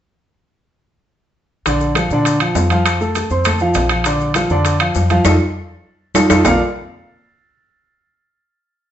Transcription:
1.66 upright bass A#1, grand piano D3 D4 D5, high bongo, high conga, high timbale, maracas
1.80 high bongo, high conga, maracas
1.95 grand piano F3 F4 F5, high bongo, high conga, high timbale, claves, maracas
2.10 upright bass A#2, grand piano D3 D4 D5, high bongo, high conga, maracas
2.25 high bongo, high conga, high timbale, maracas
2.40 grand piano F3 F4 F5, high conga, high timbale, claves, maracas
2.55 upright bass F2, high bongo, low bongo, high conga, low timbale, maracas
2.70 grand piano F3 F4 F5, high bongo, high conga, high timbale, maracas
2.86 high bongo, high timbale, claves, maracas
3.01 grand piano A3 A4 A5, high bongo, maracas
3.15 high bongo, high conga, high timbale, maracas
3.30 upright bass F2, grand piano C4 C5 C6, high bongo, high conga, maracas
3.45 grand piano A3 A4 A5, high bongo, high conga, low conga, high timbale, claves, maracas
3.59 grand piano F3 F4 F5, high conga, maracas
3.74 upright bass A#1, high bongo, low bongo, high conga, high timbale, low timbale, maracas
3.89 grand piano F3 F4 F5, high bongo, high conga, high timbale, claves, maracas
4.04 grand piano D3 D4 D5, high bongo, high conga, high timbale, maracas
4.21 high bongo, high conga, maracas
4.34 grand piano F3 F4 F5, high bongo, high conga, high timbale, claves, maracas
4.50 upright bass F2, grand piano D3 D4 D5, high bongo, high conga, maracas
4.65 high bongo, high conga, high timbale, maracas
4.80 grand piano F3 F4 F5, high conga, high timbale, claves, maracas
4.95 upright bass F2, high bongo, low bongo, high conga, maracas
5.10 grand piano F3 F4 F5, high bongo, high conga, high timbale, maracas
5.24 upright bass F2, grand piano D#4 F4 A4, high bongo, high conga, high timbale, claves, maracas
6.15 upright bass F2, grand piano D#4 F4 A4, high bongo, high conga, high timbale, claves, maracas
6.30 upright bass F2, grand piano D#4 F4 A4, high bongo, high conga, high timbale, claves, maracas
6.45 upright bass A#1, grand piano A#3 F4 A4 A#4 D5 F5, low bongo, low conga, low timbale, claves, maracas

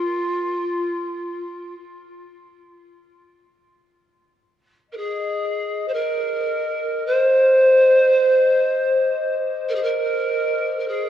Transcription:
Already playing: pan flute F4
4.87 glass harmonica D#5
4.92 pan flute A#4
4.96 pan flute G#4
5.88 pan flute C5
5.93 pan flute A#4
7.06 pan flute C5
8.56 glass harmonica C5
9.69 pan flute A#4
9.75 pan flute G#4
9.82 pan flute A#4
10.79 pan flute A#4
10.88 pan flute G#4

